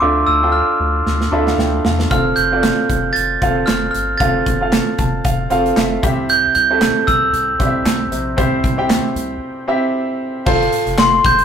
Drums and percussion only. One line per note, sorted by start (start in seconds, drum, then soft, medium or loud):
1.07 snare soft
1.21 snare soft
1.47 snare medium
1.59 snare medium
1.85 snare medium
1.99 snare medium
2.11 kick medium
2.11 closed hi-hat medium
2.37 closed hi-hat medium
2.63 snare loud
2.63 clap medium
2.63 closed hi-hat medium
2.90 kick medium
2.90 closed hi-hat medium
3.16 closed hi-hat medium
3.42 kick medium
3.42 closed hi-hat medium
3.68 snare medium
3.68 clap medium
3.68 closed hi-hat medium
3.95 closed hi-hat medium
4.20 kick loud
4.20 closed hi-hat medium
4.46 kick medium
4.46 closed hi-hat medium
4.72 snare loud
4.72 clap medium
4.72 closed hi-hat medium
4.98 kick medium
4.98 closed hi-hat medium
5.25 kick medium
5.25 closed hi-hat medium
5.50 closed hi-hat medium
5.66 closed hi-hat medium
5.77 snare medium
5.77 clap medium
5.77 closed hi-hat medium
6.03 kick loud
6.03 closed hi-hat medium
6.29 closed hi-hat medium
6.55 closed hi-hat medium
6.81 snare loud
6.81 clap medium
6.81 closed hi-hat medium
7.08 kick medium
7.08 closed hi-hat medium
7.34 closed hi-hat medium
7.60 kick medium
7.60 closed hi-hat medium
7.86 snare medium
7.86 clap medium
7.86 closed hi-hat medium
8.12 closed hi-hat medium
8.38 kick loud
8.38 closed hi-hat medium
8.64 kick medium
8.64 closed hi-hat medium
8.90 snare loud
8.90 clap medium
8.90 closed hi-hat medium
9.16 closed hi-hat medium
10.46 kick loud
10.46 crash loud
10.62 closed hi-hat soft
10.73 closed hi-hat medium
10.87 closed hi-hat soft
10.98 snare loud
10.98 clap medium
11.24 kick loud
11.24 closed hi-hat medium
11.39 closed hi-hat medium